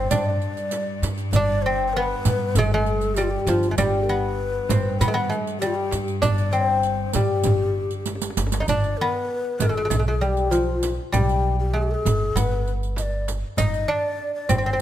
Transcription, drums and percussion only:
0.11 riq, tombak dum, frame drum
0.28 tombak ka
0.42 riq, tombak ka
0.57 riq, tombak ka
0.71 riq, tombak tek, frame drum
1.03 riq, tombak tek, frame drum
1.18 riq, tombak ka
1.33 riq, tombak dum, frame drum
1.49 tombak ka
1.64 tombak ka
1.95 tombak ka
2.25 riq, tombak dum, frame drum
2.55 riq, tombak dum, frame drum
2.71 tombak ka
2.86 riq, tombak ka
3.01 riq, tombak ka
3.16 riq, tombak tek, frame drum
3.47 riq, tombak tek, frame drum
3.63 riq, tombak ka
3.78 riq, tombak dum, frame drum
3.94 tombak ka
4.09 riq, tombak ka
4.39 tombak ka
4.69 riq, tombak dum, frame drum
5.01 riq, tombak dum, frame drum
5.16 tombak ka
5.31 riq, tombak ka
5.47 riq
5.62 riq, tombak tek, frame drum
5.91 riq, tombak tek, frame drum
6.08 riq, tombak ka
6.23 riq, tombak dum, frame drum
6.38 riq, tombak ka
6.53 riq
6.83 riq, tombak ka
7.13 riq, tombak dum, frame drum
7.44 riq, tombak dum, frame drum
7.62 tombak ka
7.77 tombak ka
7.91 riq, tombak ka
8.06 riq, tombak tek, frame drum
8.15 tombak ka
8.22 riq, tombak tek
8.30 tombak ka
8.37 riq, tombak tek, frame drum
8.47 tombak ka
8.52 riq, tombak tek
8.62 tombak ka
8.68 riq, tombak dum, frame drum
8.84 riq, tombak ka
9.01 tombak ka
9.32 tombak ka
9.60 riq, frame drum, tombak dum
9.91 riq, frame drum, tombak dum
10.21 riq
10.37 riq
10.52 riq, tombak tek, frame drum
10.83 riq, tombak tek, frame drum
11.00 tombak ka
11.14 riq, frame drum, tombak dum
11.29 riq, tombak ka
11.45 tombak ka
11.76 tombak ka
12.06 riq, tombak dum, frame drum
12.36 riq, frame drum, tombak dum
12.67 riq, tombak ka
12.83 riq
12.96 riq, tombak tek, frame drum
13.28 riq, tombak tek, frame drum
13.43 tombak ka
13.57 riq, tombak dum, frame drum
13.73 riq, tombak ka
13.89 tombak ka
14.19 tombak ka
14.49 riq, tombak dum, frame drum

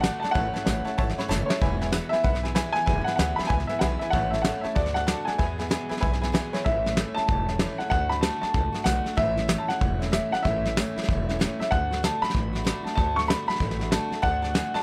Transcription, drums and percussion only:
0.04 snare, hi-hat pedal
0.24 snare
0.35 kick, snare
0.56 snare
0.67 snare, hi-hat pedal
0.87 snare
0.99 kick, snare
1.09 snare
1.20 snare
1.31 snare, hi-hat pedal
1.50 snare
1.62 kick, snare
1.81 snare
1.92 snare, hi-hat pedal
2.13 snare
2.25 kick, snare
2.35 snare
2.45 snare
2.56 snare, hi-hat pedal
2.76 snare
2.87 kick, snare
3.08 snare
3.19 snare, hi-hat pedal
3.39 snare
3.44 snare
3.50 kick, snare
3.60 snare
3.69 snare
3.81 snare, hi-hat pedal
4.01 snare
4.13 kick, snare
4.34 snare
4.45 snare, hi-hat pedal
4.64 snare
4.76 kick, snare
4.86 snare
4.96 snare
5.08 snare, hi-hat pedal
5.28 snare
5.39 kick, snare
5.60 snare
5.71 snare, hi-hat pedal
5.91 snare
5.97 snare
6.02 kick, snare
6.13 snare
6.23 snare
6.35 snare, hi-hat pedal
6.54 snare
6.66 kick, snare
6.86 snare
6.97 snare, hi-hat pedal
7.17 snare
7.28 kick, snare
7.48 snare
7.59 snare, hi-hat pedal
7.80 snare
7.91 kick, snare
8.12 snare
8.23 snare, hi-hat pedal
8.43 snare
8.54 kick, snare
8.74 snare
8.86 snare, hi-hat pedal
9.06 snare
9.17 kick, snare
9.37 snare
9.49 snare, hi-hat pedal
9.70 snare
9.81 kick, snare
10.02 snare
10.13 snare, hi-hat pedal
10.34 snare
10.45 kick, snare
10.65 snare
10.77 snare, hi-hat pedal
10.98 snare
11.03 snare
11.09 kick, snare
11.29 snare
11.41 snare, hi-hat pedal
11.61 snare
11.72 kick, snare
11.92 snare
12.04 snare, hi-hat pedal
12.24 snare
12.30 snare
12.35 kick, snare
12.55 snare
12.67 snare, hi-hat pedal
12.87 snare
12.98 kick, snare
13.19 snare
13.30 snare, hi-hat pedal
13.50 snare
13.56 snare
13.60 kick, snare
13.71 snare
13.81 snare
13.92 snare, hi-hat pedal
14.12 snare
14.23 kick, snare
14.44 snare
14.55 snare, hi-hat pedal
14.75 snare

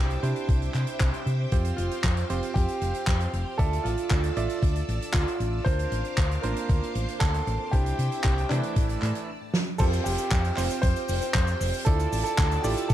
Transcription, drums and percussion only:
0.10 closed hi-hat
0.23 closed hi-hat
0.36 closed hi-hat
0.49 kick, closed hi-hat
0.62 closed hi-hat
0.74 clap, closed hi-hat
0.87 closed hi-hat
1.00 kick, clap, closed hi-hat
1.14 closed hi-hat
1.27 closed hi-hat
1.52 kick, closed hi-hat
1.65 closed hi-hat
1.78 closed hi-hat
1.91 closed hi-hat
2.04 kick, clap, closed hi-hat
2.17 closed hi-hat
2.30 closed hi-hat
2.43 closed hi-hat
2.56 kick, closed hi-hat
2.68 closed hi-hat
2.81 closed hi-hat
2.94 closed hi-hat
3.07 kick, clap, closed hi-hat
3.20 closed hi-hat
3.33 closed hi-hat
3.59 kick, closed hi-hat
3.73 closed hi-hat
3.86 closed hi-hat
3.97 closed hi-hat
4.11 kick, clap, closed hi-hat
4.24 closed hi-hat
4.37 closed hi-hat
4.49 closed hi-hat
4.63 kick, closed hi-hat
4.75 closed hi-hat
4.88 closed hi-hat
5.02 closed hi-hat
5.14 kick, clap, closed hi-hat
5.27 closed hi-hat
5.40 closed hi-hat
5.66 kick, closed hi-hat
5.79 closed hi-hat
5.92 closed hi-hat
6.05 closed hi-hat
6.18 kick, clap, closed hi-hat
6.31 closed hi-hat
6.43 closed hi-hat
6.56 closed hi-hat
6.69 kick, closed hi-hat
6.83 closed hi-hat
6.95 closed hi-hat
7.08 closed hi-hat
7.21 kick, clap, closed hi-hat
7.34 closed hi-hat
7.47 closed hi-hat
7.73 kick, closed hi-hat
7.86 closed hi-hat
7.99 closed hi-hat
8.12 closed hi-hat
8.24 kick, clap, closed hi-hat
8.38 closed hi-hat
8.50 clap, closed hi-hat
8.63 closed hi-hat
8.76 kick, closed hi-hat
8.89 closed hi-hat
9.02 clap, closed hi-hat
9.15 closed hi-hat
9.54 snare
9.79 kick, closed hi-hat, crash, cabasa
9.93 closed hi-hat, cabasa
10.06 open hi-hat, cabasa
10.18 closed hi-hat, cabasa
10.31 kick, clap, closed hi-hat, cabasa
10.44 closed hi-hat, cabasa
10.57 clap, open hi-hat, cabasa
10.70 closed hi-hat, cabasa
10.83 kick, closed hi-hat, cabasa
10.96 closed hi-hat, cabasa
11.08 open hi-hat, cabasa
11.22 closed hi-hat, cabasa
11.35 kick, clap, closed hi-hat, cabasa
11.47 closed hi-hat, cabasa
11.60 open hi-hat, cabasa
11.74 cabasa
11.86 kick, closed hi-hat, cabasa
11.99 closed hi-hat, cabasa
12.12 open hi-hat, cabasa
12.26 closed hi-hat, cabasa
12.38 kick, clap, closed hi-hat, cabasa
12.51 closed hi-hat, cabasa
12.64 open hi-hat, cabasa
12.77 closed hi-hat, cabasa
12.90 kick, closed hi-hat, cabasa

